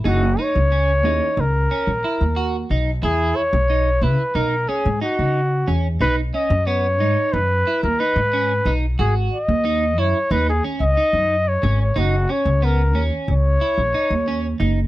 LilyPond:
<<
  \new Staff \with { instrumentName = "Trumpet" } { \time 9/8 \key e \lydian \tempo 4. = 61 fis'8 cis''4. ais'2 r8 | gis'8 cis''4 b'8 ais'8 gis'8 fis'4 r8 | b'8 dis''8 cis''4 b'8. ais'16 b'4 r8 | gis'8 dis''4 cis''8 b'16 gis'8 dis''4 cis''8 cis''16 |
fis'8 cis''8 ais'8 r8 cis''2 r8 | }
  \new Staff \with { instrumentName = "Clean electric guitar" } { \time 9/8 \key e \lydian dis'8 dis'8 cis'8 dis'4 cis'8 e'8 fis'8 dis'8 | e'4 dis'8 e'8 dis'8 cis'8 dis'4 cis'8 | dis'8 cis'8 b8 dis'4 e'8 dis'8 cis'8 dis'8 | fis'4 dis'8 e'8 dis'8 cis'8 dis'4 cis'8 |
dis'8 cis'8 b8 cis'4 e'8 dis'8 cis'8 dis'8 | }
  \new Staff \with { instrumentName = "Hollow-body jazz guitar" } { \time 9/8 \key e \lydian <ais cis' e' gis'>8 r4 <ais cis' e' gis'>8 r2 r8 | r1 r8 | r1 r8 | r1 r8 |
r1 r8 | }
  \new Staff \with { instrumentName = "Upright bass" } { \clef bass \time 9/8 \key e \lydian fis,,8 r16 cis,8. dis,16 r16 cis,8 r16 ais,,16 r16 dis,8. b,,8 | e,8 r16 b,,8. cis16 r16 b,,8 r16 gis,16 r16 cis8. e,8 | b,,8 r16 fis,8. gis,16 r16 fis,8 r16 dis,16 r16 gis,8. b,,8 | gis,,8 r16 dis,8. fis,16 r16 dis,8 r16 cis,16 r16 fis,8. gis,,8 |
fis,,8 r16 cis,8. dis,16 r16 cis,8 r16 ais,,16 r16 dis,8. fis,,8 | }
>>